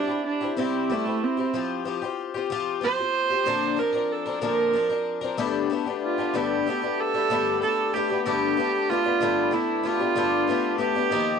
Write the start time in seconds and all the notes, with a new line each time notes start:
Already playing: D4
0.07 C4 E4 G4
0.26 D4
0.41 C4 E4 G4
0.57 C3 G3 C4 E4 G4
0.90 G3 A3 C4 E4 G4
1.06 C4 E4 G4
1.23 C4
1.37 C4 E4 G4
1.54 F3 C4 F4 G4
1.85 F3 C4 F4 G4
2.02 C4 F4 G4
2.34 C4 F4 G4
2.50 F3 C4 F4 G4
2.81 F3 C4 F4 G4 C5
2.99 C4 F4 G4
3.30 C4 F4 G4
3.46 A#2 D3 F3 C4 D4 A#4
3.77 F3 C4 D4 A#4
3.93 F3 C4 D4 A#4
4.12 A4
4.26 F3 C4 D4 A#4
4.41 A#2 D3 F3 C4 D4 A#4
4.73 F3 C4 D4 A#4
4.89 F3 C4 D4 A#4
5.21 F3 C4 D4 A#4
5.37 G2 D3 A3 B3 D4 G4
5.70 A3 B3 D4 G4
5.86 A3 B3 D4 G4
6.02 F4
6.18 A3 B3 D4 G4
6.34 G2 D3 A3 B3 D4 G4
6.66 A3 B3 D4 G4
6.82 A3 B3 D4 G4
7.00 A4
7.14 A3 B3 D4 G4
7.30 G2 D3 A3 B3 D4 G4
7.62 A3 B3 D4 G4 A4
7.93 A3 B3 D4 G4
8.10 A3 B3 D4 G4
8.25 G2 D3 A3 B3 D4 G4
8.57 A3 B3 D4 G4
8.89 A3 B3 D4 F4
8.93 G4
9.04 A3 B3 D4 G4
9.21 G2 D3 A3 B3 D4 G4
9.51 A3 B3 D4 E4 G4
9.83 A3 B3 D4 F4 G4
9.99 A3 B3 D4 G4
10.15 G2 D3 A3 B3 D4 G4
10.47 A3 B3 D4 G4
10.78 A3 B3 D4 G4
10.95 A3 B3 D4 G4
11.11 D#3 F3 A#3 D#4 G4